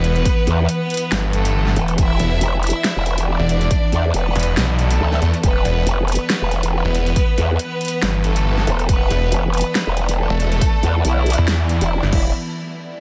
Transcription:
Already playing: E1 E3 B3 B4
0.04 closed hi-hat
0.16 closed hi-hat
0.25 kick, closed hi-hat
0.47 E2, closed hi-hat
0.69 B3 B4, closed hi-hat
0.90 closed hi-hat
0.94 closed hi-hat
0.97 closed hi-hat
1.12 G1, snare, closed hi-hat
1.33 G1 A3 A4, closed hi-hat
1.45 closed hi-hat
1.67 snare
1.76 E1, closed hi-hat
1.88 closed hi-hat
1.98 E1 E4 D5 E5, kick, closed hi-hat
2.20 E1, closed hi-hat
2.41 F1, closed hi-hat
2.63 E4 E5, closed hi-hat
2.67 closed hi-hat
2.70 closed hi-hat
2.84 snare, closed hi-hat
2.96 E1
3.06 closed hi-hat
3.18 closed hi-hat
3.28 D4 D5
3.39 E1
3.49 closed hi-hat
3.61 closed hi-hat
3.71 kick, closed hi-hat
3.92 E2, closed hi-hat
4.14 E1 B3 B4, closed hi-hat
4.36 E1, closed hi-hat
4.39 closed hi-hat
4.43 closed hi-hat
4.57 B1, snare, closed hi-hat
4.79 A3 A4, closed hi-hat
4.91 closed hi-hat
5.00 D2
5.12 snare
5.22 E2, closed hi-hat
5.34 closed hi-hat
5.43 E1 B3 B4, kick, closed hi-hat
5.65 E1, closed hi-hat
5.87 F1, closed hi-hat
6.08 B3 B4, closed hi-hat
6.12 closed hi-hat
6.15 closed hi-hat
6.30 snare, closed hi-hat
6.42 E1
6.51 closed hi-hat
6.63 closed hi-hat
6.73 B3 B4
6.85 E1
6.95 closed hi-hat
7.06 closed hi-hat
7.16 kick, closed hi-hat
7.38 E2, closed hi-hat
7.59 B3 B4, closed hi-hat
7.81 closed hi-hat
7.85 closed hi-hat
7.88 closed hi-hat
8.02 G1, snare, closed hi-hat
8.24 G1 A3 A4, closed hi-hat
8.36 closed hi-hat
8.58 snare
8.67 E1, closed hi-hat
8.79 closed hi-hat
8.89 E1 B3 B4 D5, kick, closed hi-hat
9.10 E1, closed hi-hat
9.32 F1, closed hi-hat
9.53 B3 B4, closed hi-hat
9.58 closed hi-hat
9.61 closed hi-hat
9.75 snare, closed hi-hat
9.87 E1
9.97 closed hi-hat
10.09 closed hi-hat
10.18 A3 A4
10.30 E1
10.40 closed hi-hat
10.52 closed hi-hat
10.61 kick, closed hi-hat
10.83 E2, closed hi-hat
11.05 B1 E4, closed hi-hat
11.26 closed hi-hat
11.30 closed hi-hat
11.33 closed hi-hat
11.38 E2
11.48 snare, closed hi-hat
11.69 E4, closed hi-hat
11.81 E1, closed hi-hat
12.03 G1, snare
12.13 E1 E4, kick, crash

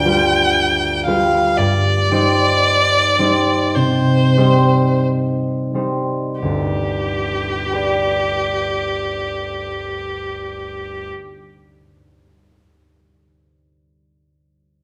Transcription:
Already playing: D2 G2 D4 G5
0.05 G3 F4 B4
1.06 G3 F4 B4 F5
1.57 G2 D5
2.11 G3 D#4 C5
3.19 G3 D#4 C5
3.75 C3 C5
4.37 G3 D#4 C5
5.74 G3 D#4 C5
6.41 G1 D2 G4
7.71 G4 B4 D5

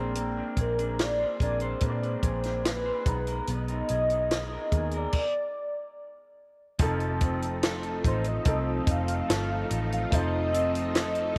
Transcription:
Already playing: A#1 F3 G#3 A#3 C4 D4 A#4 C5
0.15 A#3, closed hi-hat
0.37 D4
0.57 A#1 G#4 A#4, kick, closed hi-hat
0.78 D4, closed hi-hat
0.99 G#4 D5, snare, closed hi-hat
1.20 C5
1.40 A#1 G#3 C4 D4 G#4 A#4 D5, kick, closed hi-hat
1.60 C5, closed hi-hat
1.80 A#2 G#3 A#3 C4 D4 B4, kick, closed hi-hat
1.85 C5
1.90 D5
2.03 D4, closed hi-hat
2.23 A#1 G#4, kick, closed hi-hat
2.43 D4, snare, closed hi-hat
2.65 G#4 B4, snare, closed hi-hat
2.86 C5
3.05 B1 G#3 B3 D#4 A#5, kick, closed hi-hat
3.27 A#4, closed hi-hat
3.47 B1 B3 D#5, closed hi-hat
3.68 D#4, closed hi-hat
3.88 B1 G#4, closed hi-hat
4.10 D#4, closed hi-hat
4.31 G#4, snare, closed hi-hat
4.52 A#4
4.71 D#2 G#3 B3 D#4 G#4 A#4, kick, closed hi-hat
4.91 A#4, closed hi-hat
4.97 D5
5.13 kick, crash
6.79 F1 F3 A3 C4 D#4 A4, kick, closed hi-hat
7.00 closed hi-hat
7.21 C4, kick, closed hi-hat
7.42 closed hi-hat
7.63 A4, snare, closed hi-hat
7.83 closed hi-hat
8.04 A1 D#4 C5, kick, closed hi-hat
8.24 D#5, closed hi-hat
8.45 C2 F3 C4 D#4 A4, kick, closed hi-hat
8.87 F1 D#4 F5, kick, closed hi-hat
9.08 closed hi-hat
9.29 G1 A4, snare, closed hi-hat
9.70 A1 D#4, closed hi-hat
9.92 F5, closed hi-hat
10.11 F1 F3 C4 D#4 A4 C5 D#5, kick, closed hi-hat
10.52 C4, closed hi-hat
10.75 closed hi-hat
10.94 A4, snare, closed hi-hat
11.15 closed hi-hat

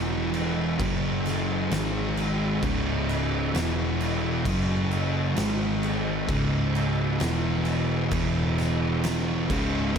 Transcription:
Already playing: E1 E2 B2 E3
0.34 crash
0.79 F#1 F#2 C#3 F#3, kick, crash
1.26 snare, crash
1.71 G#1 G#2 D#3 G#3, snare, crash
2.17 crash
2.62 C#1 C#2 G#2 C#3, kick, crash
3.09 crash
3.55 E1 E2 B2 E3, snare, crash
4.00 crash
4.45 F#1 F#2 C#3 F#3, kick, crash
4.91 crash
5.36 G#1 G#2 D#3 G#3, snare, crash
5.83 crash
6.29 C#1 C#2 G#2 C#3, kick, crash
6.75 crash
7.20 E1 E2 B2 E3, snare, crash
7.65 crash
8.11 E1 E2 B2 E3, kick, crash
8.58 snare, crash
9.04 snare, crash
9.50 C#1 C#2 G#2 C#3, kick, crash
9.95 C#2

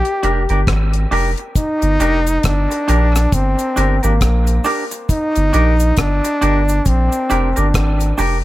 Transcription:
Already playing: G4
0.05 closed hi-hat
0.23 F1 D4 G4 A#4, closed hi-hat
0.49 G1 D4 G4 A#4, closed hi-hat
0.67 G#1, kick, cross-stick, closed hi-hat
0.93 closed hi-hat
1.11 F1 D4 G4 A#4, open hi-hat
1.37 muted clean electric guitar stroke, closed hi-hat
1.56 D#4, kick, closed hi-hat, cabasa
1.82 G1, closed hi-hat, cabasa
2.00 F1 D4 G4 A#4, closed hi-hat, cabasa
2.27 closed hi-hat, cabasa
2.43 G1 D4, kick, cross-stick, closed hi-hat, cabasa
2.71 muted clean electric guitar stroke, closed hi-hat, cabasa
2.88 A#1 D4 G4 A#4, closed hi-hat, cabasa
3.16 cross-stick, closed hi-hat, cabasa
3.32 G1 C4, kick, closed hi-hat, cabasa
3.59 closed hi-hat, cabasa
3.76 G1 D4 G4 A#4, closed hi-hat, cabasa
4.03 G#1 A#3 D4 G4 A#4, closed hi-hat, cabasa
4.21 A#1, kick, cross-stick, closed hi-hat, cabasa
4.47 closed hi-hat, cabasa
4.64 D4 G4 A#4, open hi-hat, cabasa
4.91 muted clean electric guitar stroke, closed hi-hat, cabasa
5.09 D#4, kick, closed hi-hat, cabasa
5.36 G1, closed hi-hat, cabasa
5.53 A#1 D4 G4 A#4, closed hi-hat, cabasa
5.80 closed hi-hat, cabasa
5.97 G1 D4, kick, cross-stick, closed hi-hat, cabasa
6.24 muted clean electric guitar stroke, closed hi-hat, cabasa
6.41 G1 D4 G4 A#4, closed hi-hat, cabasa
6.69 closed hi-hat, cabasa
6.86 A#1 C4, kick, closed hi-hat, cabasa
7.12 closed hi-hat, cabasa
7.30 F1 D4 G4 A#4, closed hi-hat, cabasa
7.56 G1 D4 G4 A#4, closed hi-hat, cabasa
7.74 G#1, kick, cross-stick, closed hi-hat, cabasa
8.00 closed hi-hat, cabasa
8.18 F1 D4 G4 A#4, open hi-hat, cabasa

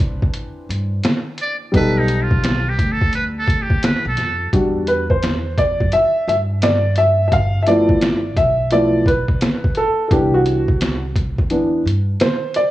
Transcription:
Already playing: C2 E3 C4 D4 B4
0.00 kick, closed hi-hat
0.22 E2, kick
0.34 closed hi-hat
0.69 G2, closed hi-hat
1.04 snare, closed hi-hat
1.38 D5, closed hi-hat
1.72 B1 G3 B3 D#4, kick, closed hi-hat
1.76 A4 B4
1.99 D#4
2.08 closed hi-hat
2.22 F4
2.31 kick
2.43 snare, closed hi-hat
2.69 G4
2.78 D2, kick, closed hi-hat
2.92 A4
3.01 kick
3.13 B4, closed hi-hat
3.39 A4
3.48 kick, closed hi-hat
3.62 G4
3.70 kick
3.83 B4, snare, closed hi-hat
4.05 B1 A4
4.17 F2, snare, closed hi-hat
4.53 E2 G3 D4 F#4, kick, closed hi-hat
4.87 B4, closed hi-hat
5.10 C5, kick
5.23 snare, closed hi-hat
5.58 D5, kick, closed hi-hat
5.80 F#2, kick
5.92 E5, closed hi-hat
6.27 G2 E5, closed hi-hat
6.62 D5, snare, closed hi-hat
6.96 E5, closed hi-hat
7.28 E5
7.32 G1 F5, kick, closed hi-hat
7.63 E5
7.67 F3 A3 B3 E4 D5, closed hi-hat
7.89 kick
8.02 snare, closed hi-hat
8.37 B1 E5, kick, closed hi-hat
8.71 F3 A3 B3 E4 D5, closed hi-hat
9.06 B4, kick, closed hi-hat
9.28 kick
9.41 snare, closed hi-hat
9.64 kick
9.75 A4, closed hi-hat
10.08 C2 E3 B3 A4, kick, closed hi-hat
10.12 D4 G4
10.34 F#4
10.46 closed hi-hat
10.68 kick
10.81 snare, closed hi-hat
11.16 kick, closed hi-hat
11.38 E2, kick
11.50 E3 B3 D4, closed hi-hat
11.86 G2, closed hi-hat
12.20 C5, snare, closed hi-hat
12.54 D5, closed hi-hat

